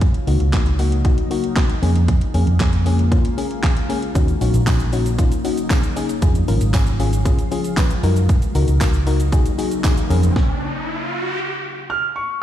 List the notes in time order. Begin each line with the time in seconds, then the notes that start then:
Already playing: F#2 C#3 F#3 A#3 D#4 F#4
0.01 kick, closed hi-hat
0.14 closed hi-hat
0.27 C#2 A#3 D#4 F#4, open hi-hat
0.40 C#2, closed hi-hat
0.53 A#3 D#4 F#4, kick, snare, clap, closed hi-hat
0.66 closed hi-hat
0.79 A#3 D#4 F#4, open hi-hat
0.92 closed hi-hat
1.05 A#3 D#4 F#4, kick, closed hi-hat
1.18 closed hi-hat
1.31 A#3 D#4 F#4, open hi-hat
1.44 closed hi-hat
1.56 A#3 D#4 F#4, kick, snare, clap, closed hi-hat
1.70 closed hi-hat
1.82 F2 G#3 A#3 C#4 F4 G#4, open hi-hat
1.96 closed hi-hat
2.08 kick, closed hi-hat
2.21 closed hi-hat
2.34 F2 A#3 C#4 G#4, open hi-hat
2.47 F2, closed hi-hat
2.60 A#3 C#4 G#4, kick, snare, clap, closed hi-hat
2.73 closed hi-hat
2.86 A#3 C#4 G#4, open hi-hat
2.99 closed hi-hat
3.11 A#3 C#4 F4, kick, closed hi-hat
3.25 closed hi-hat
3.37 A#3 C#4 G#4, open hi-hat
3.51 closed hi-hat
3.63 A#3 C#4 G#4, kick, snare, clap, closed hi-hat
3.77 closed hi-hat
3.89 A#3 C#4 G#4, open hi-hat
4.02 closed hi-hat
4.15 D#2 C#3 F#3 A#3 C#4 D#4 F#4, kick, closed hi-hat, shaker
4.28 closed hi-hat, shaker
4.41 A#1 C#4 D#4 F#4, open hi-hat, shaker
4.54 A#1, closed hi-hat, shaker
4.67 C#4 D#4 F#4, kick, snare, clap, closed hi-hat, tambourine, shaker
4.80 closed hi-hat, shaker
4.93 C#4 D#4 F#4, open hi-hat, shaker
5.06 closed hi-hat, shaker
5.18 C#4 D#4 F4, kick, closed hi-hat, shaker
5.32 closed hi-hat, shaker
5.44 C#4 D#4 F#4, open hi-hat, shaker
5.58 closed hi-hat, shaker
5.70 C#4 D#4 G#4, kick, snare, clap, closed hi-hat, tambourine, shaker
5.83 closed hi-hat, shaker
5.96 C#4 D#4 G#4, open hi-hat, shaker
6.09 closed hi-hat, shaker
6.22 F2 F3 G#3 C#4 F4 G#4, kick, closed hi-hat, shaker
6.35 closed hi-hat, shaker
6.48 G#1 C#4 F4 A#4, open hi-hat, shaker
6.61 G#1, closed hi-hat, shaker
6.74 C#4 F4 G#4, kick, snare, clap, closed hi-hat, tambourine, shaker
6.87 closed hi-hat, shaker
6.99 C#4 F4 G#4, open hi-hat, shaker
7.13 closed hi-hat, shaker
7.25 C#4 F4 G#4, kick, closed hi-hat, shaker
7.39 closed hi-hat, shaker
7.51 C#4 F4 G#4, open hi-hat, shaker
7.64 closed hi-hat, shaker
7.77 C#4 F4 B4, kick, snare, clap, closed hi-hat, tambourine, shaker
7.90 closed hi-hat, shaker
8.03 F#2 C#3 F#3 A#3 D#4 F#4 A#4, open hi-hat, shaker
8.16 closed hi-hat, shaker
8.29 kick, closed hi-hat, riser, shaker
8.42 closed hi-hat, shaker
8.55 C#2 D#4 F#4 A#4, open hi-hat, shaker
8.68 C#2, closed hi-hat, shaker
8.81 D#4 F#4 A#4, kick, snare, clap, closed hi-hat, tambourine, shaker
8.94 closed hi-hat, shaker
9.07 D#4 F#4 A#4, open hi-hat, shaker
9.20 closed hi-hat, shaker
9.32 D#4 F#4 G#4, kick, closed hi-hat, shaker
9.46 closed hi-hat, shaker
9.58 D#4 F#4 G#4, open hi-hat, shaker
9.71 closed hi-hat, shaker
9.84 D#4 F#4 G#4, kick, snare, clap, closed hi-hat, tambourine, shaker
9.97 closed hi-hat, shaker
10.10 F2 C#4 G#4 A#4, open hi-hat, shaker
10.23 closed hi-hat, shaker
10.36 kick, snare
11.90 F6
12.16 C#6